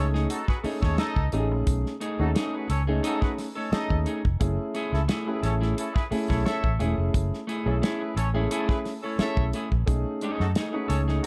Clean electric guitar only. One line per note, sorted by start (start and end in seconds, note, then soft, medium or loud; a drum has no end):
0.14 0.28 A3 medium
0.14 0.27 D#4 medium
0.14 0.27 G#4 medium
0.30 muted clean electric guitar stroke soft
0.48 muted clean electric guitar stroke soft
0.64 0.79 A3 medium
0.64 0.79 D#4 medium
0.64 0.79 G#4 medium
0.82 0.96 A3 soft
0.82 0.96 D#4 medium
0.82 0.95 G#4 medium
1.33 1.47 A3 medium
1.33 1.48 D#4 medium
1.33 1.48 G#4 medium
1.51 muted clean electric guitar stroke soft
2.00 2.19 A3 medium
2.00 2.20 D#4 medium
2.00 2.20 G#4 medium
2.35 2.54 A3 medium
2.35 2.54 D#4 loud
2.35 2.55 G#4 loud
2.70 muted clean electric guitar stroke soft
2.87 3.01 A3 medium
2.87 3.01 D#4 medium
2.87 3.00 G#4 medium
3.03 3.22 A3 medium
3.03 3.22 D#4 medium
3.03 3.23 G#4 loud
3.38 muted clean electric guitar stroke soft
3.55 3.70 A3 medium
3.55 3.69 D#4 medium
3.55 3.69 A4 medium
3.71 muted clean electric guitar stroke soft
4.06 4.21 A3 medium
4.06 4.21 D#4 medium
4.06 4.21 G#4 medium
4.25 muted clean electric guitar stroke medium
4.75 4.93 A3 medium
4.75 4.94 E4 medium
4.75 4.94 G#4 loud
5.08 5.27 A3 medium
5.08 5.28 E4 medium
5.08 5.28 G#4 medium
5.43 muted clean electric guitar stroke medium
5.61 5.75 A3 medium
5.61 5.74 E4 medium
5.61 5.74 G#4 medium
5.77 muted clean electric guitar stroke soft
5.95 muted clean electric guitar stroke medium
6.11 6.25 A3 medium
6.11 6.26 E4 medium
6.11 6.26 G#4 medium
6.29 6.43 A3 medium
6.29 6.43 E4 medium
6.29 6.42 G#4 medium
6.45 muted clean electric guitar stroke soft
6.79 6.94 A3 medium
6.79 6.95 E4 medium
6.79 6.95 G#4 medium
6.99 muted clean electric guitar stroke soft
7.47 7.66 A3 medium
7.47 7.67 E4 medium
7.47 7.67 G#4 medium
7.82 8.01 A3 medium
7.82 8.01 E4 loud
7.82 8.01 G#4 loud
8.17 muted clean electric guitar stroke soft
8.35 8.48 A3 medium
8.35 8.48 E4 medium
8.35 8.47 G#4 medium
8.51 8.69 A3 medium
8.51 8.70 E4 medium
8.51 8.70 G#4 loud
8.85 muted clean electric guitar stroke soft
9.04 9.17 A3 soft
9.04 9.16 E4 medium
9.04 9.16 A4 medium
9.54 9.68 A3 medium
9.54 9.68 E4 medium
9.54 9.69 G#4 medium
9.73 muted clean electric guitar stroke soft
10.22 10.43 A3 medium
10.22 10.43 D#4 loud
10.22 10.43 G#4 medium
10.56 10.74 A3 medium
10.56 10.75 D#4 medium
10.56 10.75 G#4 medium
10.90 muted clean electric guitar stroke soft
11.08 11.21 A3 medium
11.08 11.21 D#4 medium
11.08 11.20 G#4 medium